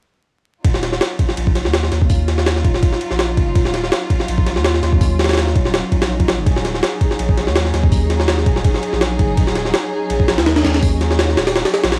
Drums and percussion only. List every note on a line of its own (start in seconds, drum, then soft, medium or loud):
0.65 kick loud
0.65 ride medium
0.74 snare medium
0.83 snare soft
0.83 ride medium
0.93 snare soft
1.01 snare loud
1.01 ride medium
1.19 kick loud
1.19 ride medium
1.29 snare soft
1.37 ride medium
1.47 kick medium
1.55 snare soft
1.55 ride medium
1.65 snare medium
1.73 snare loud
1.73 ride medium
1.83 snare medium
1.92 snare soft
1.92 ride medium
2.02 kick medium
2.10 kick loud
2.10 open hi-hat medium
2.28 snare soft
2.28 ride medium
2.38 snare medium
2.46 snare loud
2.46 ride medium
2.56 snare soft
2.65 kick loud
2.65 ride medium
2.74 snare medium
2.83 kick loud
2.83 ride medium
2.93 snare soft
3.01 ride medium
3.11 snare soft
3.19 snare loud
3.19 ride medium
3.37 kick medium
3.37 ride medium
3.55 kick loud
3.55 ride medium
3.65 snare medium
3.74 snare soft
3.74 ride medium
3.84 snare soft
3.92 snare loud
3.92 ride medium
4.10 kick medium
4.10 ride medium
4.20 snare soft
4.28 ride medium
4.38 kick medium
4.46 snare soft
4.46 ride medium
4.56 snare medium
4.64 snare loud
4.64 ride medium
4.74 snare medium
4.83 snare soft
4.83 ride medium
4.93 kick medium
5.01 kick loud
5.01 open hi-hat medium
5.19 snare medium
5.19 ride medium
5.24 snare medium
5.24 ride medium
5.29 snare medium
5.29 ride medium
5.33 snare medium
5.33 ride medium
5.37 snare loud
5.37 ride medium
5.47 snare soft
5.55 kick loud
5.55 ride medium
5.65 snare medium
5.74 snare loud
5.74 ride medium
5.92 kick medium
5.92 ride medium
6.02 snare loud
6.02 ride medium
6.20 kick medium
6.20 ride medium
6.28 snare loud
6.28 ride medium
6.46 kick loud
6.46 ride medium
6.56 snare medium
6.65 snare soft
6.65 ride medium
6.74 snare soft
6.83 snare loud
6.83 ride medium
7.01 kick loud
7.01 ride medium
7.11 snare soft
7.19 ride medium
7.29 kick medium
7.37 snare soft
7.37 ride medium
7.47 snare medium
7.55 snare loud
7.55 ride medium
7.65 snare soft
7.74 snare soft
7.74 ride medium
7.84 kick medium
7.92 kick loud
7.92 open hi-hat medium
8.10 snare soft
8.10 ride medium
8.20 snare medium
8.28 snare loud
8.28 ride medium
8.38 snare soft
8.46 kick loud
8.46 ride medium
8.56 snare medium
8.65 kick loud
8.65 ride medium
8.74 snare soft
8.83 ride medium
8.93 snare soft
9.01 snare loud
9.01 ride medium
9.19 kick medium
9.19 ride medium
9.37 kick loud
9.37 ride medium
9.47 snare medium
9.55 snare soft
9.55 ride medium
9.65 snare soft
9.74 snare loud
9.74 ride medium
10.10 ride medium
10.20 kick medium
10.28 snare loud
10.28 ride medium
10.38 snare loud
10.38 ride medium
10.46 snare loud
10.46 ride medium
10.56 snare loud
10.56 ride medium
10.65 snare loud
10.65 ride medium
10.74 snare loud
10.74 ride medium
10.83 kick loud
10.83 open hi-hat medium
11.01 snare soft
11.01 ride medium
11.11 snare medium
11.19 snare loud
11.19 ride medium
11.29 snare soft
11.37 snare loud
11.37 ride medium
11.47 snare loud
11.47 ride medium
11.56 snare loud
11.56 ride medium
11.65 snare loud
11.65 ride medium
11.74 snare loud
11.74 ride medium
11.84 snare loud
11.84 ride medium
11.92 snare loud
11.92 ride medium